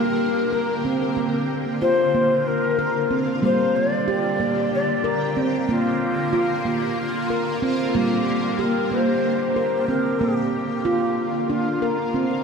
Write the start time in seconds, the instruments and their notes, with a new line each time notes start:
Already playing: ambient pad D3 A#3 G4, handpan G3 A#3, native american-style wooden flute A#4
0.53 handpan A#4
0.85 handpan C4
1.17 handpan A#3, ambient pad F4
1.81 handpan F4, native american-style wooden flute C5
2.15 handpan A#3
2.47 native american-style wooden flute A#4
2.79 handpan A#4
3.11 handpan C4
3.42 handpan G3 A#3, ambient pad A#3 G4, native american-style wooden flute C5
3.76 native american-style wooden flute D5
4.08 handpan G4
4.40 handpan A#3
4.74 native american-style wooden flute D5
5.04 handpan A#4
5.37 handpan C4
5.69 ambient pad D3 F4, handpan A#3, native american-style wooden flute F4
6.33 handpan F4
6.65 handpan A#3, native american-style wooden flute G4
6.99 native american-style wooden flute F4
7.30 handpan A#4
7.57 native american-style wooden flute G4
7.62 handpan C4, native american-style wooden flute F4
7.95 handpan G3 A#3, ambient pad G4, native american-style wooden flute G4
8.59 handpan G4, native american-style wooden flute A#4
8.91 handpan A#3, native american-style wooden flute C5
9.56 handpan A#4
9.88 handpan C4, native american-style wooden flute A#4
10.20 ambient pad D3 A#3 F4, handpan A#3, native american-style wooden flute G4
10.85 handpan F4
11.50 handpan D4, native american-style wooden flute F4
11.82 handpan A#4
12.14 handpan C4